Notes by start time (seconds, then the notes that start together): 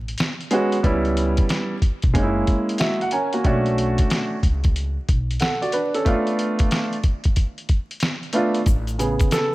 Already playing: A1
0.08 closed hi-hat
0.18 snare, closed hi-hat
0.41 closed hi-hat
0.51 G#3 B3 C#4 F#4, closed hi-hat
0.72 closed hi-hat
0.83 C#2 G3 B3 C#4 E4, kick, closed hi-hat
1.05 closed hi-hat
1.17 closed hi-hat
1.37 kick, closed hi-hat
1.49 snare, closed hi-hat
1.82 kick, closed hi-hat
2.02 B1, kick, closed hi-hat
2.14 F#1 G#3 A#3 C#4 D#4, kick, closed hi-hat
2.23 E4
2.47 kick, closed hi-hat
2.69 closed hi-hat
2.78 A#3 F#4 E5, snare, closed hi-hat
3.01 F#5, closed hi-hat
3.11 C#4 A#4 G#5, closed hi-hat
3.33 A#3 F#4, closed hi-hat
3.44 B1 A3 C#4 D4 F#4, kick, closed hi-hat
3.66 closed hi-hat
3.78 closed hi-hat
3.98 kick, closed hi-hat
4.10 snare, closed hi-hat
4.43 C#2, kick, closed hi-hat
4.64 kick, closed hi-hat
4.76 closed hi-hat
5.09 B1, kick, closed hi-hat
5.31 closed hi-hat
5.40 A4 F#5, snare, closed hi-hat
5.62 F#4 D5, closed hi-hat
5.72 D4 B4, closed hi-hat
5.94 C#4 A4, closed hi-hat
6.05 A3 B3 D4 F4, kick, closed hi-hat
6.27 closed hi-hat
6.39 closed hi-hat
6.59 kick, closed hi-hat
6.71 snare, closed hi-hat
6.93 closed hi-hat
7.04 kick, closed hi-hat
7.24 kick, closed hi-hat
7.36 kick, closed hi-hat
7.58 closed hi-hat
7.69 kick, closed hi-hat
7.91 closed hi-hat
8.00 snare, closed hi-hat
8.23 closed hi-hat
8.33 A3 B3 D4 F4, closed hi-hat
8.54 closed hi-hat
8.66 A1, kick, closed hi-hat, shaker
8.87 closed hi-hat, shaker
8.99 C#3 B3 G#4, closed hi-hat, shaker
9.19 kick, closed hi-hat, shaker
9.31 A4, snare, closed hi-hat, shaker